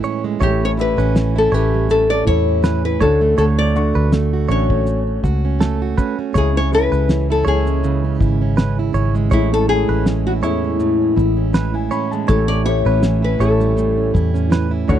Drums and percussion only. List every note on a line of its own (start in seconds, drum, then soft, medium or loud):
0.04 shaker medium
0.41 kick loud
0.41 shaker medium
0.79 shaker medium
0.99 shaker medium
1.16 snare loud
1.16 shaker medium
1.54 shaker medium
1.90 shaker medium
2.27 kick medium
2.27 shaker soft
2.64 snare loud
2.64 shaker medium
3.01 kick loud
3.01 shaker medium
3.38 shaker medium
3.76 shaker medium
4.12 snare loud
4.12 shaker medium
4.51 shaker medium
4.70 kick medium
4.87 shaker medium
5.24 kick medium
5.24 shaker medium
5.61 snare loud
5.61 shaker medium
5.98 kick loud
5.98 shaker medium
6.35 kick loud
6.35 shaker medium
6.56 snare soft
6.73 shaker medium
6.93 shaker medium
7.09 snare loud
7.09 shaker medium
7.47 shaker medium
7.67 shaker medium
7.84 shaker medium
8.21 kick medium
8.21 shaker soft
8.58 snare loud
8.58 shaker medium
8.94 shaker medium
9.15 shaker soft
9.31 kick loud
9.31 shaker medium
9.52 snare soft
9.69 shaker medium
10.06 snare loud
10.06 shaker medium
10.44 shaker medium
10.80 shaker medium
11.17 kick medium
11.17 shaker soft
11.54 snare loud
11.54 shaker medium
11.91 shaker medium
12.12 shaker medium
12.29 kick loud
12.29 shaker medium
12.66 shaker medium
13.03 snare loud
13.03 shaker medium
13.41 shaker medium
13.61 shaker medium
13.78 shaker medium
14.15 kick medium
14.15 shaker medium
14.36 shaker medium
14.52 snare loud
14.52 shaker medium
14.89 kick loud
14.89 shaker medium